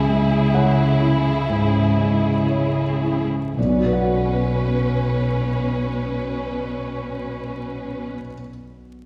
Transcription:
Already playing: C#2 C#3 G#3 E4 G#4 G#5
0.10 G#3
0.24 E4
0.54 G#3 C#5 F#5
1.02 E4
1.17 G#3
1.49 G#2
1.80 G#3
1.98 G#3
2.13 E4
2.47 G#3 C#5
3.03 E4
3.20 G#3
3.56 B1 B2 C#4 B4 D5
3.63 B2 B3
3.70 B3 F#4
3.77 F#4 C#6
3.84 B4 F#5
3.93 F#5

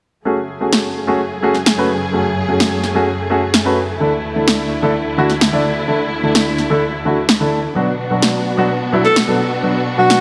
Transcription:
0.25 F#2 C#3 A3 C#4 F#4 G#4
0.60 A3 C#4 F#4 G#4
0.73 snare
1.07 A3 C#4 F#4 G#4
1.42 A3 C#4 F#4 G#4
1.55 snare
1.66 snare
1.78 A3 C#4 F#4 B4
2.13 A3 C#4 F#4 G#4
2.48 A3 C#4 F#4 G#4
2.60 snare
2.84 snare
2.95 A3 C#4 F#4 G#4
3.30 A3 C#4 F#4 G#4
3.54 snare
3.65 A3 C#4 F#4 B4
4.00 D2 D3 A3 D4 E4 A4
4.35 D3 A3 D4 E4 A4
4.48 snare
4.82 D3 A3 D4 E4 A4
5.17 D3 A3 D4 E4 F#4
5.30 snare
5.41 snare
5.52 D3 A3 D4 E4 D5
5.88 D3 A3 D4 E4 A4
6.23 D3 A3 D4 E4 A4
6.35 snare
6.58 snare
6.70 D3 A3 D4 E4 A4
7.05 D3 A3 D4 E4 F#4
7.29 snare
7.40 D3 A3 D4 E4 A4
7.75 B2 F#3 B3 D4 F#4
8.10 B2 F#3 B3 D4 F#4
8.22 snare
8.57 B2 F#3 B3 D4 F#4
8.92 B2 F#3 B3 D4 E4
9.05 A4, snare
9.16 snare
9.27 B2 F#3 B3 D4 A4
9.63 B2 F#3 B3 D4 F#4
9.98 B2 F#3 B3 D4 F#4
10.10 snare

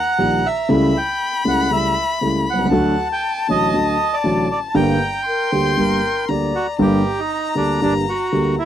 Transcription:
Already playing: F#5 A#5
0.18 A#1 A#2 D#3 G3 A#3 G4
0.46 E5
0.69 C#2 C#3 G3 A3 E4 B5
0.97 G5
1.45 C#2 C#3 G3 A3 E4 F#5
1.70 C#2 C#3 G3 A3 E4 E5
2.21 C#2 C#3 G3 A3 E4
2.50 B1 F#5
2.59 C2
2.65 C#2
2.71 D2 D3 F#3 A3 F#4 A5
3.13 G5
3.48 A1 A2 D3 F#3 A3 F#4 D#5
3.74 D2 D3 F#3 A3 F#4
4.14 D5
4.24 A1 A2 D3 F#3 A3 F#4
4.51 D5
4.69 A5
4.75 G1 G2 D3 G3 A#3 G4 G5 A#5
5.25 A#4 C6
5.51 D2 D3 G3 A#3 G4 C5
5.77 G1 G2 D3 G3 A#3 G4 A#4
6.29 D2 D3 G3 A#3 G4 D5 A#5
6.55 F#4
6.79 G1 G2 D3 G3 A#3 G4 A#5
7.19 D#4
7.55 D2 D3 G3 A#3 D4 G4
7.82 G1 G2 D3 G3 A#3 D4 G4
8.09 F#4
8.32 D2 D3 G3 A#3 G4
8.59 E4

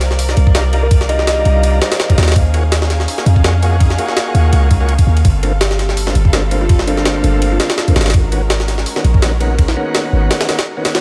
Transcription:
Already playing: C2 D#3 A#4 D5 F5
0.01 snare, ride
0.11 snare
0.19 open hi-hat
0.29 G3 D4 D#4 F4 A#4, snare
0.37 C2, ride
0.47 kick
0.55 G3 D4 D#4 F4 A#4, snare, ride
0.73 G3 D4 D#4 F4 A#4, ride
0.83 A#4
0.91 kick, ride
1.01 snare
1.09 G3 D4 D#4 F4 A#4 D#5, ride
1.19 D#5, snare
1.27 D#5, snare, ride
1.45 C2, ride
1.63 ride
1.81 G3 D4 D#4 F4 A#4 C5, snare, ride
1.91 C5, snare, ride
2.00 snare
2.10 G3 D4 D#4 F4 A#4, kick, ride
2.18 D#2 G3 D4 D#4 F4 A#4, snare, ride
2.23 snare, ride
2.28 snare, ride
2.32 snare, ride
2.36 C#4 D#4 G#4, kick, ride
2.54 A#3 F4 F#4 G#4 C#5, ride
2.72 snare, ride
2.82 snare
2.90 snare, ride
3.00 snare
3.08 open hi-hat
3.18 A#3 F4 F#4 G#4 C#5, snare
3.26 F2, ride
3.36 kick
3.44 A#3 F4 F#4 G#4 C#5, snare, ride
3.62 A#3 F4 F#4 G#4 C#5, ride
3.80 kick, ride
3.90 snare
3.98 A#3 F4 F#4 G#4 C#5, ride
4.08 snare
4.17 snare, ride
4.35 D#2, ride
4.53 C#2, ride
4.71 kick, ride
4.81 A#3 F4 F#4 G#4 C#5
4.89 ride
4.99 kick, ride
5.07 D#2
5.17 ride
5.25 G1 G3 C4 A4, kick, ride
5.43 D3 A3 A#3 C4 F4, ride
5.61 G4, snare, ride
5.71 snare
5.79 snare, ride
5.89 snare
5.97 open hi-hat
6.07 D3 A3 A#3 C4 F4, snare
6.15 G1, ride
6.25 kick
6.33 D3 A3 A#3 C4 F4, snare, ride
6.51 D3 A3 A#3 C4 F4, ride
6.61 F4
6.69 kick, ride
6.79 snare
6.87 D3 A3 A#3 C4 D4 F4, ride
6.97 D4, snare
7.05 snare, ride
7.24 G1, ride
7.42 ride
7.52 F4
7.60 D3 A3 A#3 C4 F4, snare, ride
7.70 snare, ride
7.78 snare
7.88 D3 A3 A#3 C4 F4, kick, ride
7.96 G#1 D3 A3 A#3 C4 F4, snare, ride
8.01 snare, ride
8.06 snare, ride
8.10 snare, ride
8.14 G#3 C#4 F#4 A#4, kick, ride
8.32 D#3 A#3 B3 C#4 F#4, ride
8.50 snare, ride
8.60 snare
8.68 snare, ride
8.78 snare
8.86 open hi-hat
8.96 D#3 A#3 B3 C#4 F#4, snare
9.04 A#1, ride
9.14 kick
9.22 D#3 A#3 B3 C#4 F#4, snare, ride
9.41 D#3 A#3 B3 C#4 F#4, ride
9.59 kick, ride
9.68 snare
9.77 D#3 A#3 B3 C#4 F#4
9.95 snare, ride
10.13 G#1
10.31 snare, ride
10.41 snare, ride
10.49 D#3 A#3 B3 C#4 F#4, snare, ride
10.59 snare, ride
10.77 D#3 A#3 B3 C#4 F#4
10.85 D#3 A#3 B3 C#4 F#4, snare, ride
10.95 snare, ride

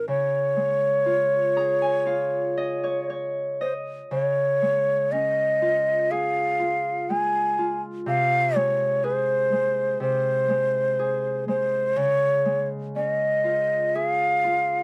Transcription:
Already playing: D#3 G#3 C4 D#4
0.08 C#3 C#5
0.56 G#3
1.06 F4
1.56 G#4 A#5
1.82 G#5
2.06 F4 F5
2.57 D#5
2.84 C#5
3.10 C#5
3.61 C5 D#5
4.11 C#3 C#5
4.62 G#3
5.12 C#4 D#5
5.62 F4
6.11 G#4 F5
6.60 F4
7.10 G#3 G#5
7.58 F4
8.06 C3 F5
8.56 G#3 C#5
9.04 G#4 C5
9.52 G#3
10.00 C3 C5
10.49 G#3
10.99 G#4
11.48 G#3 C5
11.96 C#3 C#5
12.45 G#3
12.96 C#4 D#5
13.44 F4
13.95 G#4 E5
14.07 F5
14.44 F4

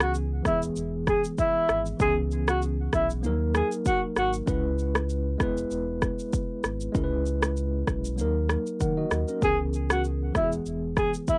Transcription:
Already playing: C#2 E3 B3 C#4 G#4
0.00 F#4, cross-stick, shaker
0.14 shaker
0.43 E1 E3 G#3 B3 E4, kick, cross-stick, shaker
0.48 G#4
0.62 shaker
0.76 E1, shaker
1.07 G#4, kick, cross-stick, shaker
1.24 shaker
1.38 E4, kick, shaker
1.69 G#1, cross-stick, shaker
1.86 shaker
1.97 C#2 E3 B3 C#4, kick, shaker
2.01 G#4
2.31 shaker
2.48 F#4, cross-stick, shaker
2.62 shaker
2.93 B1 E4, kick, cross-stick, shaker
3.10 shaker
3.21 D#2 F3 A#3 D#4, shaker
3.26 F#3 A#4
3.55 G#4, cross-stick, shaker
3.72 shaker
3.85 F#4, kick, shaker
4.16 G#1 F#4, cross-stick, shaker
4.33 shaker
4.46 C#2 G#3 C#4 E4 B4, kick, shaker
4.79 shaker
4.95 cross-stick, shaker
5.09 shaker
5.38 E1 G#3 B3 E4, kick, cross-stick, shaker
5.43 B4
5.57 shaker
5.71 E1, shaker
6.02 kick, cross-stick, shaker
6.19 shaker
6.33 kick, shaker
6.64 G#1, cross-stick, shaker
6.81 shaker
6.92 C#2 G#3 C#4 E4, kick, shaker
6.97 A#4
7.04 B4
7.26 shaker
7.43 cross-stick, shaker
7.57 shaker
7.87 B1, kick, cross-stick, shaker
8.05 shaker
8.16 D#2 F#3 A#3 D#4, shaker
8.21 A#4
8.49 cross-stick, shaker
8.67 shaker
8.80 D#3 A#4 F#5, kick, shaker
8.98 F#4 D#5
9.11 D#2, cross-stick, shaker
9.28 C#4 A#4, shaker
9.41 C#2 E3 B3 C#4 G4 G#4, kick, shaker
9.50 G#4
9.74 shaker
9.90 F#4, cross-stick, shaker
10.04 shaker
10.33 E1 E3 G#3 B3 E4, kick, cross-stick, shaker
10.38 F#4
10.44 G#4
10.52 shaker
10.66 E1, shaker
10.97 G#4, kick, cross-stick, shaker
11.14 shaker
11.28 E4, kick, shaker

